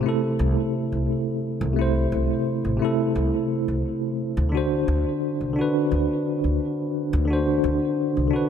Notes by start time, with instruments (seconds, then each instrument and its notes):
Already playing: tine electric piano A3 E4 C5
0.00 tine electric piano C3 A3
0.06 tine electric piano E4 A4
0.39 upright bass C2
0.92 upright bass C2
1.61 upright bass C2
1.73 tine electric piano C3 A3
1.79 tine electric piano E4 C5
2.12 upright bass C2
2.65 upright bass A1
2.77 tine electric piano C3 A3
2.82 tine electric piano E4 A4
3.16 upright bass C2
3.68 upright bass C2
4.37 upright bass D2
4.49 tine electric piano D3 D4
4.55 tine electric piano F#4 C5
4.88 upright bass D2
5.41 upright bass C2
5.53 tine electric piano D3 D4
5.59 tine electric piano F#4 B4
5.91 upright bass D2
6.44 upright bass D2
7.13 upright bass D2
7.25 tine electric piano D3 D4
7.30 tine electric piano F#4 C5
7.64 upright bass D2
8.17 upright bass C2
8.28 tine electric piano D3 D4
8.33 tine electric piano F#4 B4